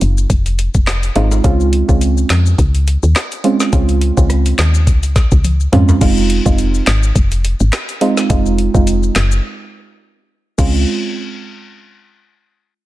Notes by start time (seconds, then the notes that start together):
0.01 F#1, closed hi-hat, maracas
0.18 maracas
0.30 F1, kick, closed hi-hat, maracas
0.46 closed hi-hat, maracas
0.59 closed hi-hat, maracas
0.74 F1, kick, maracas
0.87 cross-stick, snare, clap, closed hi-hat, maracas
1.03 closed hi-hat, maracas
1.16 G#1 G#3 C4 D#4 F4, closed hi-hat, high timbale
1.31 high timbale, maracas
1.44 C#2 G#3 C4 C#4 F4, kick, closed hi-hat, maracas
1.60 maracas
1.73 closed hi-hat
1.89 C#2 G#3 C4 C#4 F4, kick, maracas
2.01 closed hi-hat, maracas
2.17 maracas
2.30 F2, snare, clap, closed hi-hat, maracas
2.46 maracas
2.58 C#2, kick, closed hi-hat, maracas
2.75 closed hi-hat, maracas
2.87 closed hi-hat, maracas
3.03 D#2, maracas
3.16 cross-stick, snare, clap, closed hi-hat, maracas
3.32 closed hi-hat, maracas
3.44 G#3 C4 C#4 F4, closed hi-hat
3.60 snare, maracas
3.73 C#2 G#3 C4 C#4 F4, kick, closed hi-hat, maracas
3.89 closed hi-hat, maracas
4.01 closed hi-hat
4.17 C#2 G#3 C4 C#4 F4, kick, maracas
4.30 cross-stick, closed hi-hat, maracas
4.46 closed hi-hat, maracas
4.58 D#2, snare, clap, closed hi-hat, maracas
4.74 maracas
4.87 C#2, kick, closed hi-hat, maracas
5.03 closed hi-hat, maracas
5.16 kick, snare, closed hi-hat, maracas
5.31 C#2, kick, maracas
5.44 closed hi-hat, high tom, maracas
5.60 maracas
5.72 F2 G#3 C4 C#4 F4, closed hi-hat, mid tom, high timbale
5.89 floor tom, high timbale, maracas
6.01 F1 G#3 C4 D#4 F4, kick, closed hi-hat, crash, maracas
6.17 maracas
6.30 closed hi-hat
6.46 F1 G#3 C4 D#4 F4, kick, maracas
6.58 closed hi-hat, maracas
6.74 maracas
6.87 G#1, snare, clap, closed hi-hat, maracas
7.03 maracas
7.16 F1, kick, closed hi-hat, maracas
7.32 closed hi-hat, maracas
7.44 closed hi-hat, maracas
7.60 G#1, maracas
7.73 cross-stick, snare, clap, closed hi-hat, maracas
7.89 closed hi-hat, maracas
8.01 G#3 C4 D#4 F4, closed hi-hat
8.17 snare, maracas
8.30 F1 G#3 C4 D#4 F4, kick, closed hi-hat, maracas
8.46 maracas
8.59 closed hi-hat
8.74 F1 G#3 C4 D#4 F4, kick, maracas
8.87 closed hi-hat, maracas
9.03 maracas
9.16 F#1, snare, clap, closed hi-hat, maracas
9.31 maracas
10.58 C#2 G#3 C4 C#4 F4, kick, crash, maracas